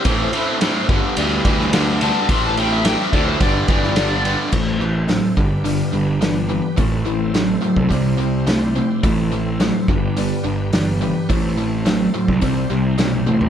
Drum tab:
CC |----------------|----------------|x---------------|----------------|
RD |x-x-x-x-x-x-x-x-|x-x-x-x-x-x-x-x-|----------------|----------------|
HH |----------------|----------------|----o---o---o---|o---o---o---o---|
SD |----o------oo---|----o------oo---|----o-------o---|----o-------o---|
T1 |----------------|----------------|----------------|----------------|
FT |----------------|----------------|----------------|----------------|
BD |o-----o---o-----|o-----o-o-o-----|o-----o---------|o------oo-------|

CC |----------------|----------------|
RD |----------------|----------------|
HH |o---o---o---o---|o---o---o---o---|
SD |----o-------o---|----o-------o---|
T1 |----------------|--------------o-|
FT |----------------|---------------o|
BD |o-----o---------|o------oo-------|